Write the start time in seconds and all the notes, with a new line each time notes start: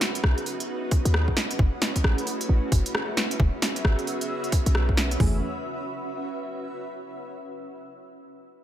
Already playing: B3 C#4 D#4 F#4 G#4 B4
0.01 snare, open hi-hat
0.15 closed hi-hat
0.24 B1, cross-stick
0.28 D#5
0.38 closed hi-hat
0.46 open hi-hat
0.60 closed hi-hat
0.91 kick, open hi-hat
1.05 D#2, closed hi-hat
1.14 cross-stick
1.28 kick
1.36 A3 C#4 E4, snare, open hi-hat
1.51 closed hi-hat
1.59 F#1, kick
1.82 snare, open hi-hat
1.96 kick, closed hi-hat
2.04 A1, cross-stick
2.11 E5
2.18 closed hi-hat
2.27 open hi-hat
2.41 closed hi-hat
2.49 A1
2.72 F#1, kick, open hi-hat
2.86 closed hi-hat
2.95 cross-stick
3.17 snare, open hi-hat
3.31 closed hi-hat
3.40 E1 B3 C#4 F#4 G#4, kick
3.62 snare, open hi-hat
3.76 closed hi-hat
3.85 G#1, cross-stick
3.99 closed hi-hat
4.07 open hi-hat
4.21 closed hi-hat
4.44 closed hi-hat
4.52 kick, open hi-hat
4.66 B1, closed hi-hat
4.75 cross-stick
4.89 kick
4.97 snare, open hi-hat
5.11 closed hi-hat
5.20 F#1 E3 A3 C#4 G#4, kick, floor tom, open hi-hat
5.28 F#4
5.36 B4
5.41 E5